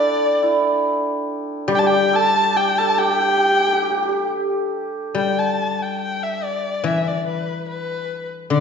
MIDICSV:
0, 0, Header, 1, 4, 480
1, 0, Start_track
1, 0, Tempo, 842697
1, 20, Time_signature, 2, 2, 24, 8
1, 1939, Tempo, 865801
1, 3379, Tempo, 841515
1, 4862, End_track
2, 0, Start_track
2, 0, Title_t, "Erhu"
2, 0, Program_c, 0, 110
2, 0, Note_on_c, 0, 74, 97
2, 509, Note_off_c, 0, 74, 0
2, 997, Note_on_c, 0, 79, 105
2, 1018, Note_on_c, 0, 81, 92
2, 1027, Note_off_c, 0, 79, 0
2, 1062, Note_on_c, 0, 79, 110
2, 1070, Note_off_c, 0, 81, 0
2, 1227, Note_on_c, 0, 81, 119
2, 1236, Note_off_c, 0, 79, 0
2, 1460, Note_on_c, 0, 79, 110
2, 1468, Note_off_c, 0, 81, 0
2, 1584, Note_on_c, 0, 81, 107
2, 1593, Note_off_c, 0, 79, 0
2, 1696, Note_on_c, 0, 79, 114
2, 1705, Note_off_c, 0, 81, 0
2, 2416, Note_off_c, 0, 79, 0
2, 2916, Note_on_c, 0, 79, 80
2, 3038, Note_on_c, 0, 81, 84
2, 3046, Note_off_c, 0, 79, 0
2, 3278, Note_on_c, 0, 79, 76
2, 3286, Note_off_c, 0, 81, 0
2, 3382, Note_off_c, 0, 79, 0
2, 3385, Note_on_c, 0, 79, 85
2, 3513, Note_on_c, 0, 76, 80
2, 3521, Note_off_c, 0, 79, 0
2, 3626, Note_on_c, 0, 74, 83
2, 3635, Note_off_c, 0, 76, 0
2, 3865, Note_on_c, 0, 76, 77
2, 3874, Note_off_c, 0, 74, 0
2, 3993, Note_on_c, 0, 74, 72
2, 4001, Note_off_c, 0, 76, 0
2, 4098, Note_off_c, 0, 74, 0
2, 4101, Note_on_c, 0, 71, 71
2, 4324, Note_off_c, 0, 71, 0
2, 4341, Note_on_c, 0, 71, 77
2, 4676, Note_off_c, 0, 71, 0
2, 4817, Note_on_c, 0, 74, 78
2, 4862, Note_off_c, 0, 74, 0
2, 4862, End_track
3, 0, Start_track
3, 0, Title_t, "Hammered dulcimer"
3, 0, Program_c, 1, 15
3, 0, Note_on_c, 1, 62, 81
3, 0, Note_on_c, 1, 64, 72
3, 0, Note_on_c, 1, 67, 73
3, 0, Note_on_c, 1, 69, 84
3, 240, Note_off_c, 1, 64, 0
3, 242, Note_on_c, 1, 64, 71
3, 936, Note_off_c, 1, 69, 0
3, 953, Note_off_c, 1, 67, 0
3, 955, Note_on_c, 1, 67, 97
3, 1042, Note_off_c, 1, 67, 0
3, 1045, Note_on_c, 1, 67, 88
3, 1214, Note_on_c, 1, 69, 99
3, 1457, Note_off_c, 1, 67, 0
3, 1459, Note_on_c, 1, 67, 88
3, 1584, Note_off_c, 1, 69, 0
3, 1586, Note_on_c, 1, 69, 95
3, 1695, Note_off_c, 1, 67, 0
3, 1697, Note_on_c, 1, 67, 85
3, 1741, Note_off_c, 1, 67, 0
3, 1743, Note_on_c, 1, 67, 59
3, 1772, Note_off_c, 1, 67, 0
3, 1774, Note_on_c, 1, 67, 66
3, 1821, Note_off_c, 1, 67, 0
3, 1823, Note_on_c, 1, 67, 58
3, 1867, Note_off_c, 1, 67, 0
3, 1869, Note_on_c, 1, 67, 60
3, 1883, Note_off_c, 1, 62, 0
3, 1917, Note_off_c, 1, 67, 0
3, 1919, Note_on_c, 1, 67, 52
3, 1964, Note_off_c, 1, 67, 0
3, 1966, Note_on_c, 1, 67, 58
3, 2001, Note_off_c, 1, 67, 0
3, 2003, Note_on_c, 1, 67, 49
3, 2045, Note_off_c, 1, 67, 0
3, 2047, Note_on_c, 1, 67, 57
3, 2085, Note_off_c, 1, 67, 0
3, 2087, Note_on_c, 1, 67, 52
3, 2117, Note_off_c, 1, 67, 0
3, 2119, Note_on_c, 1, 67, 58
3, 2168, Note_off_c, 1, 67, 0
3, 2170, Note_on_c, 1, 67, 54
3, 2213, Note_off_c, 1, 67, 0
3, 2214, Note_off_c, 1, 64, 0
3, 2215, Note_on_c, 1, 67, 65
3, 2250, Note_off_c, 1, 67, 0
3, 2252, Note_on_c, 1, 67, 62
3, 2282, Note_off_c, 1, 67, 0
3, 2284, Note_on_c, 1, 67, 68
3, 2316, Note_off_c, 1, 67, 0
3, 2318, Note_on_c, 1, 67, 62
3, 3217, Note_off_c, 1, 69, 0
3, 4078, Note_off_c, 1, 67, 0
3, 4862, End_track
4, 0, Start_track
4, 0, Title_t, "Guzheng"
4, 0, Program_c, 2, 107
4, 956, Note_on_c, 2, 55, 73
4, 2405, Note_off_c, 2, 55, 0
4, 2904, Note_on_c, 2, 55, 54
4, 3855, Note_on_c, 2, 52, 55
4, 4343, Note_off_c, 2, 55, 0
4, 4805, Note_on_c, 2, 50, 58
4, 4862, Note_off_c, 2, 50, 0
4, 4862, Note_off_c, 2, 52, 0
4, 4862, End_track
0, 0, End_of_file